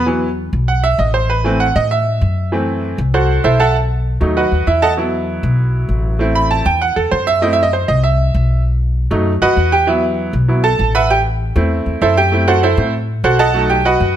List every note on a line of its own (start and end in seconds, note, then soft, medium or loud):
0.00 0.47 E2 medium
0.06 0.27 E3 medium
0.06 0.27 F#3 soft
0.06 0.28 B3 medium
0.53 0.96 B1 medium
0.68 0.83 F#5 medium
0.84 0.98 E5 medium
0.98 1.70 A1 medium
0.98 1.14 D#5 medium
1.14 1.29 C5 medium
1.30 1.58 B4 medium
1.44 1.65 E3 medium
1.44 1.65 A3 medium
1.44 1.66 C4 medium
1.60 1.75 F#5 medium
1.76 2.18 A2 loud
1.76 1.91 D#5 medium
1.91 2.79 E5 medium
2.21 2.93 F#2 medium
2.52 2.96 E3 medium
2.52 2.96 A3 medium
2.52 2.97 C4 medium
2.98 3.41 C2 loud
3.14 3.43 F#4 medium
3.14 3.43 A4 medium
3.14 3.43 C5 medium
3.14 3.42 F#5 medium
3.44 4.15 B1 loud
3.44 3.59 E4 medium
3.44 3.59 A4 medium
3.44 3.59 C5 medium
3.44 3.59 E5 medium
3.60 3.75 A4 medium
3.60 3.75 E5 medium
3.60 3.75 F#5 medium
3.60 3.75 A5 medium
4.21 4.49 D#2 medium
4.21 4.41 F#3 medium
4.21 4.42 A3 soft
4.21 4.42 D#4 medium
4.37 4.65 F#4 medium
4.37 4.65 B4 medium
4.37 4.65 D#5 medium
4.37 4.65 F#5 medium
4.51 4.66 D#2 medium
4.67 5.38 E2 medium
4.67 4.82 E4 medium
4.67 4.82 E5 medium
4.82 4.92 A4 medium
4.82 4.92 D#5 medium
4.82 4.92 F#5 medium
4.82 4.92 A5 loud
4.97 6.16 F#3 medium
4.97 6.16 B3 medium
4.97 6.17 E4 medium
5.43 5.86 B1 medium
5.89 6.60 A1 medium
6.19 6.63 A3 medium
6.19 6.64 C4 medium
6.19 6.64 E4 medium
6.35 6.50 B5 loud
6.51 6.66 A5 medium
6.65 6.94 E2 loud
6.65 6.81 G5 loud
6.82 6.96 F#5 medium
6.96 7.11 E2 medium
6.96 7.11 A4 medium
7.11 7.83 F#2 loud
7.11 7.27 C5 medium
7.27 7.42 E5 loud
7.42 7.63 A3 medium
7.42 7.63 C4 medium
7.42 7.63 E4 medium
7.42 7.52 D#5 medium
7.53 7.63 E5 medium
7.63 7.73 D#5 medium
7.73 7.88 C5 medium
7.88 8.31 C2 medium
7.88 8.03 D#5 medium
8.04 8.61 E5 medium
8.34 9.05 B1 medium
9.11 9.39 F#2 loud
9.11 9.31 F#3 medium
9.11 9.31 A3 medium
9.11 9.32 D#4 medium
9.42 9.56 F#2 medium
9.42 9.70 F#4 medium
9.42 9.70 B4 medium
9.42 9.70 D#5 medium
9.42 9.70 F#5 medium
9.57 10.28 E2 medium
9.72 9.87 G4 medium
9.72 9.87 G5 loud
9.87 10.31 F#3 medium
9.87 10.31 B3 medium
9.87 10.31 E4 medium
9.87 10.02 B4 medium
9.87 10.02 E5 medium
10.33 10.76 B1 medium
10.48 10.62 F#3 soft
10.48 10.62 B3 soft
10.48 10.63 E4 medium
10.64 10.92 A4 medium
10.64 10.92 A5 loud
10.79 11.50 A1 medium
10.95 11.10 B4 medium
10.95 11.10 E5 medium
10.95 11.10 F#5 medium
10.95 11.10 B5 loud
11.10 11.20 G4 medium
11.10 11.19 G5 loud
11.56 11.84 E2 loud
11.56 12.28 A3 medium
11.56 12.29 C4 medium
11.56 12.01 E4 medium
11.86 12.00 E2 medium
12.01 12.72 F#2 loud
12.01 12.17 E4 medium
12.01 12.17 A4 medium
12.01 12.17 C5 medium
12.01 12.17 E5 medium
12.17 12.46 G4 medium
12.17 12.46 G5 loud
12.32 12.52 A3 medium
12.32 12.53 C4 soft
12.32 12.53 E4 medium
12.48 12.63 F#4 medium
12.48 12.62 A4 medium
12.48 12.62 C5 medium
12.48 12.62 F#5 medium
12.63 12.77 E4 medium
12.63 12.92 A4 medium
12.63 12.92 C5 medium
12.63 12.91 E5 medium
12.77 13.20 A2 loud
12.77 12.92 A3 soft
12.77 12.92 C4 soft
12.77 12.92 E4 medium
13.24 13.95 B1 medium
13.24 13.39 F#4 medium
13.24 13.38 A4 medium
13.24 13.39 C5 medium
13.24 13.38 F#5 medium
13.39 13.68 A4 medium
13.39 13.68 D#5 medium
13.39 13.68 F#5 medium
13.39 13.68 A5 loud
13.54 13.75 F#3 medium
13.54 13.75 A3 medium
13.54 13.75 D#4 medium
13.70 13.85 G4 medium
13.70 13.85 G5 loud
13.85 14.14 F#4 medium
13.85 14.14 B4 medium
13.85 14.14 D#5 medium
13.85 14.14 F#5 medium
14.00 14.16 F#2 medium